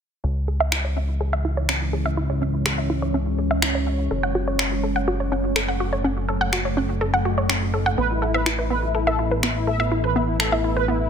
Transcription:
0.24 4.08 C#2 medium
0.24 4.07 E3 medium
0.24 4.07 G#3 medium
0.24 7.94 C#4 medium
0.24 0.29 C#4 medium
0.24 2.15 G#4 medium
0.24 6.00 C#5 medium
0.48 0.57 G#4 medium
0.60 0.66 E5 loud
0.72 0.84 E4 medium
0.72 finger snap loud
0.85 0.93 C#5 medium
0.96 1.02 C#4 medium
1.21 1.30 G#4 medium
1.33 1.38 E5 loud
1.45 1.57 E4 medium
1.57 1.66 C#5 medium
1.69 1.75 C#4 medium
1.69 finger snap loud
1.93 2.02 G#4 medium
2.06 2.11 E5 loud
2.17 2.29 E4 medium
2.17 4.09 F#4 medium
2.30 2.39 C#5 medium
2.42 2.47 C#4 medium
2.66 2.75 G#4 medium
2.66 finger snap loud
2.78 2.83 E5 loud
2.90 3.02 E4 medium
3.02 3.11 C#5 medium
3.14 3.20 C#4 medium
3.38 3.48 G#4 medium
3.51 3.56 E5 loud
3.62 3.74 E4 medium
3.62 finger snap loud
3.75 3.84 C#5 medium
3.87 3.92 C#4 medium
4.11 7.96 F#1 medium
4.11 7.94 F#3 medium
4.11 11.10 A3 medium
4.11 11.10 A4 medium
4.11 4.20 A4 medium
4.23 4.29 F#5 loud
4.35 4.47 F#4 medium
4.47 4.56 C#5 medium
4.59 4.65 C#4 medium
4.59 finger snap loud
4.83 4.93 A4 medium
4.96 5.01 F#5 loud
5.08 5.19 F#4 medium
5.20 5.29 C#5 medium
5.32 5.37 C#4 medium
5.56 5.65 A4 medium
5.56 finger snap loud
5.68 5.74 F#5 loud
5.80 5.92 F#4 medium
5.93 6.01 C#5 medium
6.04 6.10 C#4 medium
6.04 7.96 D#5 medium
6.29 6.38 A4 medium
6.41 6.46 F#5 loud
6.53 6.65 F#4 medium
6.53 finger snap loud
6.65 6.74 C#5 medium
6.77 6.83 C#4 medium
7.01 7.10 A4 medium
7.14 7.19 F#5 loud
7.25 7.37 F#4 medium
7.38 7.47 C#5 medium
7.49 7.55 C#4 medium
7.49 finger snap loud
7.74 7.83 A4 medium
7.86 7.91 F#5 loud
7.98 11.10 A1 medium
7.98 11.10 E3 medium
7.98 11.10 B3 medium
7.98 8.04 B3 medium
7.98 8.07 B4 loud
7.98 11.10 B4 medium
8.10 8.19 E4 medium
8.22 8.31 E4 medium
8.22 8.31 A4 medium
8.34 8.43 B4 medium
8.34 8.40 E5 loud
8.46 8.55 E4 medium
8.46 8.58 E4 medium
8.46 finger snap loud
8.59 8.67 E4 medium
8.59 8.68 B4 medium
8.70 8.76 B3 medium
8.70 8.80 B4 medium
8.83 8.92 E4 medium
8.95 9.04 E4 medium
8.95 9.04 A4 medium
9.07 9.16 A4 medium
9.07 9.12 E5 medium
9.19 9.28 E4 medium
9.19 9.31 E4 medium
9.31 9.40 B4 medium
9.43 9.49 B3 medium
9.43 9.52 E4 medium
9.43 finger snap loud
9.56 9.64 E4 medium
9.67 9.77 A4 medium
9.67 9.76 E5 loud
9.80 9.89 E4 medium
9.80 9.85 E5 loud
9.91 10.01 E4 medium
9.91 10.03 E4 medium
10.04 10.13 B4 medium
10.16 10.21 B3 medium
10.16 10.25 E4 medium
10.28 10.37 E4 medium
10.40 10.49 A4 medium
10.40 finger snap loud
10.52 10.61 E4 medium
10.52 10.58 E5 loud
10.64 10.73 E4 medium
10.64 10.76 E4 medium
10.76 10.85 B4 medium
10.88 10.94 B3 medium
10.88 10.97 E4 medium
11.01 11.09 E4 medium

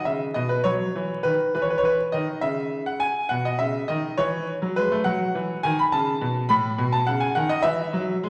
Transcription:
0.05 0.28 C#3 medium
0.05 0.24 E5 medium
0.34 0.57 B2 medium
0.34 0.50 D#5 medium
0.49 0.65 B4 medium
0.64 0.87 F#3 medium
0.64 1.20 C#5 medium
0.95 1.17 E3 medium
1.23 1.46 D#3 medium
1.23 1.53 B4 medium
1.55 1.76 E3 medium
1.55 1.63 B4 medium
1.62 1.71 C#5 medium
1.70 1.79 B4 medium
1.78 1.86 C#5 medium
1.83 2.04 E3 medium
1.83 2.02 B4 medium
2.12 2.35 D#3 medium
2.12 2.42 D#5 medium
2.41 3.06 C#3 medium
2.41 2.82 E5 medium
2.86 3.01 F#5 medium
3.00 3.30 G#5 loud
3.29 3.52 B2 medium
3.29 3.45 F#5 loud
3.45 3.60 D#5 medium
3.59 3.81 C#3 medium
3.59 3.88 E5 medium
3.88 4.10 D#3 medium
3.88 4.15 D#5 medium
4.17 4.49 E3 medium
4.17 4.52 C#5 loud
4.62 4.76 F#3 medium
4.76 4.91 G#3 medium
4.76 4.94 B4 loud
4.92 5.05 A3 medium
5.04 5.26 F#3 medium
5.04 5.63 F#5 loud
5.35 5.56 E3 medium
5.63 5.84 D#3 medium
5.63 5.78 G#5 loud
5.79 5.92 B5 loud
5.92 6.13 C#3 medium
5.92 6.45 A5 loud
6.21 6.41 B2 medium
6.49 6.70 A2 medium
6.49 6.92 B5 loud
6.78 6.99 B2 medium
6.92 7.07 A5 loud
7.07 7.28 C#3 medium
7.07 7.21 F#5 loud
7.20 7.35 G#5 loud
7.35 7.57 D#3 medium
7.35 7.49 F#5 loud
7.49 7.64 D#5 loud
7.62 7.85 E3 medium
7.62 8.16 E5 loud
7.93 8.14 F#3 medium
8.23 8.29 G#3 medium

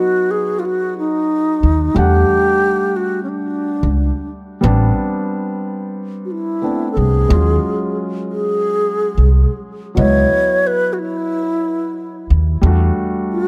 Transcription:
0.00 1.91 F#3 medium
0.00 1.92 B3 medium
0.00 1.93 D#4 medium
0.00 0.32 F#4 loud
0.00 1.94 F#4 medium
0.31 0.61 G#4 loud
0.59 0.67 F4 medium
0.65 0.98 F#4 medium
0.98 1.98 D#4 loud
1.63 1.89 D#2 medium
1.94 2.22 E2 loud
1.94 4.58 G3 medium
1.94 4.59 A3 medium
1.94 4.60 D4 medium
1.94 2.98 G4 loud
1.99 4.60 F#5 medium
2.96 3.23 F#4 medium
3.23 3.30 C#4 medium
3.29 4.29 D4 medium
3.83 4.09 C#2 medium
4.61 4.90 A1 loud
4.61 6.58 G3 medium
4.61 6.59 B3 medium
4.61 6.59 C4 medium
4.65 6.60 D4 medium
6.25 6.33 F#4 medium
6.32 6.92 E4 medium
6.62 7.29 A3 soft
6.62 7.29 B3 soft
6.62 7.30 C4 soft
6.62 7.30 D4 medium
6.92 6.99 A4 medium
6.97 7.23 C2 medium
6.97 7.97 G#4 loud
7.27 7.56 D#2 loud
7.27 7.36 F3 soft
7.27 9.92 G#3 medium
7.27 9.93 C#4 medium
7.32 9.93 F#3 medium
7.32 9.94 F4 medium
8.32 9.60 G#4 loud
9.18 9.43 C2 medium
9.95 10.23 C#2 loud
9.95 12.58 F#3 medium
9.95 12.59 B3 medium
9.95 10.68 C#5 loud
9.95 12.60 D#5 medium
10.00 12.61 E4 medium
10.67 10.95 B4 loud
10.93 11.01 F#4 medium
10.99 12.31 E4 medium
12.30 12.56 D#2 medium
12.62 12.89 E2 loud
12.62 13.48 G3 medium
12.62 13.48 A3 medium
12.62 13.48 D4 medium
12.67 13.48 F#4 medium
13.33 13.48 F#4 loud

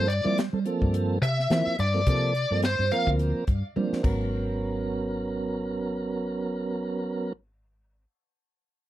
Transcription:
0.00 0.19 G2 medium
0.08 0.36 D5 medium
0.08 closed hi-hat medium
0.24 0.41 F3 medium
0.24 0.49 G3 medium
0.24 0.41 A#3 medium
0.24 0.41 C4 medium
0.24 0.41 E4 medium
0.38 snare medium
0.38 closed hi-hat medium
0.53 0.64 G3 medium
0.53 0.59 C4 soft
0.53 0.60 A4 soft
0.66 1.18 F3 medium
0.66 1.18 A#3 medium
0.66 1.18 C4 medium
0.66 1.19 A4 medium
0.66 closed hi-hat medium
0.82 1.16 G2 medium
0.82 kick medium
0.94 closed hi-hat medium
1.21 1.46 C3 medium
1.21 1.75 E5 medium
1.21 closed hi-hat medium
1.39 snare soft
1.50 1.63 E3 medium
1.50 1.76 F3 medium
1.50 1.77 A#3 medium
1.50 1.77 C4 medium
1.50 1.77 E4 medium
1.50 snare medium
1.50 closed hi-hat medium
1.66 muted fretless electric bass stroke soft
1.79 2.03 G2 medium
1.79 2.60 D5 medium
1.79 closed hi-hat medium
1.94 2.02 F3 medium
1.94 2.02 A#3 medium
1.94 2.02 C4 medium
1.94 2.02 A4 medium
2.07 2.44 C3 medium
2.07 2.33 F3 medium
2.07 2.33 A#3 medium
2.07 2.34 C4 medium
2.07 2.34 A4 medium
2.07 kick medium
2.07 closed hi-hat medium
2.35 closed hi-hat medium
2.50 2.75 G2 medium
2.50 2.67 F3 medium
2.50 2.67 A#3 medium
2.50 2.67 C4 medium
2.50 2.67 A4 medium
2.63 2.91 C5 medium
2.63 snare medium
2.63 closed hi-hat medium
2.79 2.89 G2 medium
2.79 2.85 C4 soft
2.79 2.86 C5 soft
2.91 3.44 F3 medium
2.91 3.44 A#3 medium
2.91 3.44 C4 medium
2.91 3.45 A#4 medium
2.91 3.08 F5 medium
2.91 closed hi-hat soft
3.07 3.31 D2 medium
3.07 kick medium
3.19 closed hi-hat medium
3.47 3.61 G2 medium
3.47 kick medium
3.47 closed hi-hat soft
3.76 4.02 F3 medium
3.76 3.89 G3 medium
3.76 4.02 A#3 medium
3.76 4.02 C4 medium
3.76 4.02 D4 medium
3.76 high tom soft
3.92 muted fretless electric bass stroke soft
3.92 snare soft
4.03 8.03 G#1 medium
4.03 7.33 F#3 medium
4.03 7.33 B3 medium
4.03 7.33 C#4 medium
4.03 7.33 A#4 medium
4.03 kick medium
4.03 crash medium

